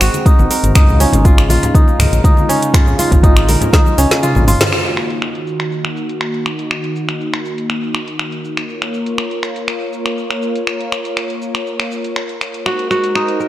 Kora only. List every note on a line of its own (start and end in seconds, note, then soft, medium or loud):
0.00 1.06 C4 loud
0.00 0.25 D#4 medium
0.00 1.31 F#4 loud
0.00 0.29 A#4 medium
0.26 0.75 D#4 medium
0.51 1.78 A#4 medium
0.75 1.74 D#4 medium
1.00 2.49 C#4 loud
1.25 1.49 F4 loud
1.50 2.73 F4 loud
1.75 2.24 D#4 medium
1.99 3.27 A#4 medium
2.24 3.23 D#4 medium
2.49 3.98 C#4 medium
2.74 2.98 F4 loud
2.99 4.22 F4 loud
3.24 3.73 D#4 medium
3.49 4.76 A#4 medium
3.73 5.35 D#4 medium
3.98 5.72 C#4 loud
4.23 4.47 F4 loud
4.48 5.99 F4 loud
12.66 12.90 F#4 medium
12.91 13.48 F#4 loud
13.15 13.48 D#4 medium
13.40 13.48 A#4 medium